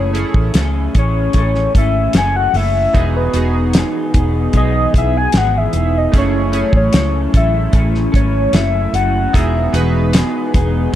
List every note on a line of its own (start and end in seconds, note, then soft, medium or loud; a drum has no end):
0.00 0.23 F#1 medium
0.00 0.15 F#2 medium
0.00 0.15 C#3 medium
0.00 0.15 E3 medium
0.00 0.13 A3 medium
0.00 0.15 A3 loud
0.00 0.13 C#4 medium
0.00 0.15 C#4 medium
0.00 0.14 E4 medium
0.00 0.15 G#4 medium
0.00 0.13 A4 medium
0.00 0.11 C#5 medium
0.13 1.18 A3 medium
0.13 0.54 A3 soft
0.13 1.19 C#4 medium
0.13 0.55 C#4 medium
0.13 1.19 E4 medium
0.13 1.19 G#4 medium
0.13 0.55 A4 medium
0.13 closed hi-hat medium
0.17 0.54 E3 soft
0.34 0.51 A1 medium
0.34 kick medium
0.54 0.87 C#2 medium
0.54 0.95 F#2 medium
0.54 0.95 C#3 medium
0.54 0.95 E3 medium
0.54 0.95 A3 loud
0.54 0.95 C#4 loud
0.54 0.94 A4 medium
0.54 snare loud
0.54 closed hi-hat loud
0.95 1.27 A1 medium
0.95 1.34 E3 soft
0.95 1.35 A3 soft
0.95 1.35 C#4 medium
0.95 1.35 A4 medium
0.95 1.73 C#5 medium
0.95 kick medium
0.95 closed hi-hat medium
1.33 1.66 A1 medium
1.33 1.75 E3 medium
1.33 1.75 A3 medium
1.33 1.75 C#4 medium
1.33 kick medium
1.33 closed hi-hat medium
1.38 1.75 A4 medium
1.55 snare soft
1.75 2.07 G#1 medium
1.75 2.15 E3 soft
1.75 2.15 A3 soft
1.75 2.16 C#4 soft
1.75 2.15 A4 medium
1.75 2.14 E5 medium
1.75 kick medium
1.75 closed hi-hat medium
2.13 2.46 F#1 medium
2.13 2.55 F#2 medium
2.13 2.55 C#3 medium
2.13 2.55 E3 medium
2.13 2.55 A3 medium
2.13 2.54 C#4 medium
2.13 2.53 A4 medium
2.13 snare loud
2.13 closed hi-hat medium
2.17 2.37 G#5 medium
2.36 2.58 F#5 loud
2.54 2.86 F#1 medium
2.54 2.93 E3 soft
2.54 2.95 A3 soft
2.54 2.95 C#4 soft
2.54 2.95 A4 soft
2.54 3.16 E5 loud
2.54 open hi-hat soft
2.93 3.26 E1 loud
2.93 6.11 E3 medium
2.93 3.34 E3 medium
2.93 3.35 G#3 medium
2.93 3.20 B3 medium
2.93 6.11 B3 medium
2.93 3.35 B3 medium
2.93 3.21 D#4 medium
2.93 3.34 D#4 medium
2.93 3.21 F#4 medium
2.93 6.11 G#4 medium
2.93 3.21 G#4 medium
2.93 3.32 G#4 medium
2.93 kick medium
2.93 closed hi-hat medium
3.16 3.53 B4 medium
3.34 3.82 E1 loud
3.34 4.39 B3 medium
3.34 3.74 B3 soft
3.34 4.39 D#4 medium
3.34 3.75 D#4 soft
3.34 4.39 F#4 medium
3.34 3.74 G#4 medium
3.34 4.40 G#4 medium
3.34 closed hi-hat medium
3.73 4.15 E3 medium
3.73 4.15 G#3 medium
3.73 4.15 B3 medium
3.73 4.15 D#4 loud
3.73 4.14 G#4 medium
3.73 snare loud
3.73 closed hi-hat medium
4.14 4.47 E1 medium
4.14 4.54 B3 medium
4.14 4.54 D#4 medium
4.14 4.55 G#4 medium
4.14 kick medium
4.14 closed hi-hat medium
4.53 4.86 B1 medium
4.53 4.94 G#3 medium
4.53 4.95 B3 medium
4.53 4.95 D#4 medium
4.53 4.93 G#4 medium
4.53 4.93 D#5 loud
4.53 kick medium
4.53 closed hi-hat medium
4.94 5.26 B1 medium
4.94 5.34 B3 soft
4.94 5.35 D#4 soft
4.94 5.35 G#4 soft
4.94 5.19 E5 medium
4.94 kick medium
4.94 closed hi-hat medium
5.17 5.39 G#5 loud
5.32 5.66 G#1 medium
5.32 5.74 E3 medium
5.32 5.75 G#3 medium
5.32 5.75 B3 medium
5.32 5.74 D#4 medium
5.32 5.72 G#4 medium
5.32 snare loud
5.32 closed hi-hat medium
5.37 5.59 F#5 medium
5.58 5.99 E5 loud
5.73 6.06 E1 medium
5.73 6.15 B3 soft
5.73 6.15 D#4 soft
5.73 6.14 G#4 medium
5.73 closed hi-hat medium
5.98 6.16 D#5 medium
6.12 6.62 F#1 loud
6.12 6.54 F#2 medium
6.12 6.54 C#3 medium
6.12 6.55 E3 medium
6.12 9.31 F#3 medium
6.12 6.39 A3 medium
6.12 9.31 A3 medium
6.12 6.54 A3 medium
6.12 6.40 C#4 medium
6.12 9.31 C#4 medium
6.12 6.40 E4 medium
6.12 9.31 E4 medium
6.12 6.40 G#4 medium
6.12 kick loud
6.12 closed hi-hat medium
6.16 6.53 C#4 medium
6.16 6.51 A4 medium
6.16 6.72 C#5 loud
6.52 7.58 A3 medium
6.52 6.93 A3 soft
6.52 7.58 C#4 medium
6.52 6.93 C#4 medium
6.52 7.58 E4 medium
6.52 7.59 G#4 medium
6.52 6.93 A4 medium
6.52 closed hi-hat medium
6.56 6.93 E3 soft
6.73 6.89 A1 medium
6.73 7.31 C#5 medium
6.73 kick medium
6.92 7.26 C#2 medium
6.92 7.33 F#2 medium
6.92 7.34 C#3 medium
6.92 7.34 E3 medium
6.92 7.33 A3 medium
6.92 7.32 C#4 loud
6.92 7.32 A4 medium
6.92 snare loud
6.92 closed hi-hat medium
7.33 7.66 A1 medium
7.33 7.70 E3 soft
7.33 7.72 A3 soft
7.33 7.73 C#4 soft
7.33 7.73 A4 medium
7.33 7.73 E5 medium
7.33 kick loud
7.33 closed hi-hat medium
7.72 8.06 A1 medium
7.72 8.13 E3 medium
7.72 8.13 A3 medium
7.72 8.11 C#4 medium
7.72 8.11 A4 medium
7.72 kick medium
7.72 closed hi-hat medium
7.95 snare soft
8.12 8.46 G#1 loud
8.12 8.52 E3 soft
8.12 8.52 A3 soft
8.12 8.53 C#4 medium
8.12 8.53 A4 medium
8.12 8.57 C#5 medium
8.12 kick medium
8.12 closed hi-hat medium
8.52 8.85 F#1 loud
8.52 8.93 F#2 medium
8.52 8.93 C#3 medium
8.52 8.94 E3 medium
8.52 8.94 A3 medium
8.52 8.93 C#4 medium
8.52 8.93 A4 medium
8.52 8.96 E5 medium
8.52 snare loud
8.52 closed hi-hat medium
8.93 9.25 F#1 medium
8.93 9.32 E3 soft
8.93 9.34 A3 medium
8.93 9.34 C#4 soft
8.93 9.34 A4 soft
8.93 9.36 F#5 loud
8.93 closed hi-hat medium
9.33 9.66 E1 loud
9.33 9.74 E3 medium
9.33 10.95 G#3 medium
9.33 9.74 G#3 medium
9.33 9.60 B3 medium
9.33 10.95 B3 medium
9.33 9.74 B3 medium
9.33 9.60 D#4 medium
9.33 9.60 F#4 medium
9.33 10.95 G#4 medium
9.33 9.61 G#4 medium
9.33 9.72 G#4 medium
9.33 9.74 E5 loud
9.33 kick medium
9.33 closed hi-hat medium
9.73 10.22 E1 loud
9.73 10.78 B3 medium
9.73 10.13 B3 soft
9.73 10.78 D#4 medium
9.73 10.14 D#4 medium
9.73 10.79 F#4 medium
9.73 10.14 G#4 medium
9.73 10.79 B4 medium
9.73 closed hi-hat medium
10.13 10.53 E3 medium
10.13 10.54 G#3 medium
10.13 10.54 B3 medium
10.13 10.53 D#4 medium
10.13 10.52 G#4 loud
10.13 snare loud
10.13 closed hi-hat loud
10.53 10.86 E1 loud
10.53 10.92 B3 soft
10.53 10.93 D#4 medium
10.53 10.94 G#4 medium
10.53 kick medium
10.53 closed hi-hat medium
10.92 10.95 G#3 medium